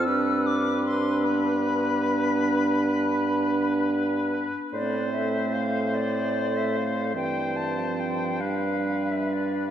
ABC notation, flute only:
X:1
M:12/8
L:1/16
Q:3/8=50
K:Gmix
V:1 name="Flute"
e'2 d'2 c'2 b16 z2 | d2 e2 f2 d3 e f2 g2 a2 g2 f3 e d2 |]